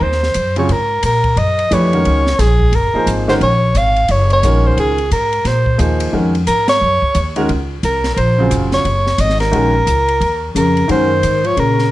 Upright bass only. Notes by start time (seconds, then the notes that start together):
0.01 D#2
0.35 F#2
0.69 G#2
1.03 A#2
1.36 F#2
1.71 F2
2.05 C#2
2.39 A#1
2.72 F#1
2.94 muted upright bass stroke
3.06 G#1
3.40 A#1
3.75 G#1
4.09 F#1
4.43 A#1
4.77 C#2
5.11 G#2
5.45 A#2
5.79 D#2
6.13 F2
6.48 G#2
6.81 F#2
7.02 muted upright bass stroke
7.15 D#2
7.49 C#2
7.83 C2
8.16 A#1
8.51 F1
8.85 F#1
9.18 G#1
9.53 A#1
9.87 C#2
10.20 D#2
10.55 F2
10.89 F#2
11.23 G#2
11.57 A#2